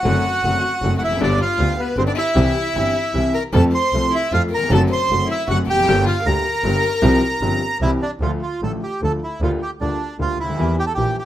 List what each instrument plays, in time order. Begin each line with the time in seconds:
Already playing: violin F#4, bandoneon F#5
0.04 double bass F#1, upright piano F#2 D3 F#3 A3 C4 F#4
0.43 double bass F#1, upright piano F#2 D3 F#3 A3 C4 F#4
0.82 double bass F#1, upright piano F#2 D3 F#3 A3 C4 F#4
0.97 double bass F1, violin F#4, bandoneon F#5
1.03 violin E4, bandoneon E5
1.08 upright piano E2
1.12 upright piano F2
1.17 double bass G1, upright piano G1 F#2
1.21 upright piano G2 D3 G3 B3 G4, violin D4, bandoneon D5
1.41 violin F4, bandoneon F5
1.58 double bass D2, upright piano D2 D3 G3 B3 G4
1.79 violin B3, bandoneon B4
1.97 double bass G1, upright piano G1 G2 D3 G3 B3 G4, violin C4, bandoneon C5
2.07 violin D4, bandoneon D5
2.15 violin E4, bandoneon E5
2.35 upright piano C2 C3 E3 G3 C4 G4, double bass C2
2.75 double bass G1, upright piano G1 G2 E3 G3 C4 G4
3.14 double bass C2, upright piano C2 C3 E3 G3 C4 G4
3.34 violin A#4, bandoneon A#5
3.53 double bass F2, upright piano F2 F3 A3 C4 A4, violin A4, bandoneon A5
3.73 violin C5, bandoneon C6
3.93 double bass C2, upright piano C2 C3 F3 A3 C4 A4
4.12 violin E4, bandoneon E5
4.32 double bass F2, upright piano F2 F3 A3 C4 A4, violin F4, bandoneon F5
4.51 violin A#4, bandoneon A#5
4.57 upright piano D#2
4.63 upright piano E2
4.68 double bass F#1, upright piano F2 F#2 D3 F#3 A3, violin A4
4.72 upright piano C4 F#4, bandoneon A5
4.89 violin C5, bandoneon C6
5.10 double bass F#1, upright piano F#2 D3 F#3 A3 C4 F#4
5.28 violin E4, bandoneon E5
5.47 double bass F#1, upright piano F#2 D3 F#3 A3 C4 F#4, violin F#4, bandoneon F#5
5.67 double bass F1, violin G4, bandoneon G5
5.74 upright piano E2
5.79 upright piano F2
5.83 double bass G1, upright piano F#2
5.88 upright piano G1 G2 D3 G3 A#3 G4
6.06 violin F4, bandoneon F5
6.25 double bass D2, upright piano D2 D3 G3 A#3 G4, violin A#4, bandoneon A#5
6.64 upright piano G1 G2 D3 G3 A#3 G4, double bass G1
7.02 upright piano C2 C3 F3 G3 C4 G4, double bass C2
7.41 double bass G1, upright piano G1 G2 F3 G3 C4 G4
7.80 double bass C2, upright piano C2 C3 E3 G3 C4 G4, bandoneon E4
8.02 bandoneon D4
8.20 double bass D2, upright piano D2 D3 F3 A3 F4, bandoneon F4
8.43 bandoneon F4
8.61 double bass A1, upright piano A1 A2 D3 F3 A3 F4, bandoneon A4
8.83 bandoneon G4
9.01 double bass D2, upright piano D2 D3 F3 A3 F4, bandoneon A4
9.24 bandoneon E4
9.41 double bass D2, upright piano D2 D3 G3 A#3 F4, bandoneon F4
9.62 bandoneon G4
9.80 double bass D2, upright piano D2 D3 G3 A#3 F4, bandoneon D4
10.19 double bass D2, upright piano D2 D3 G3 A#3 F4, bandoneon F4
10.39 double bass D2, bandoneon E4
10.44 upright piano C#2
10.49 upright piano D2
10.54 upright piano D#2
10.58 double bass E2, upright piano E2 E3 G3 A#3 G4
10.79 bandoneon G4
10.87 bandoneon A4
10.94 double bass A#1, upright piano A#1 A#2 E3 G3 A#3 G4, bandoneon G4
11.19 bandoneon G4